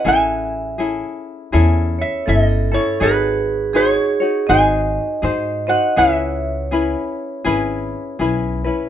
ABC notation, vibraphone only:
X:1
M:4/4
L:1/8
Q:"Swing" 1/4=81
K:C#m
V:1 name="Vibraphone"
e2 z3 c A A | G2 G2 d3 d | c6 z2 |]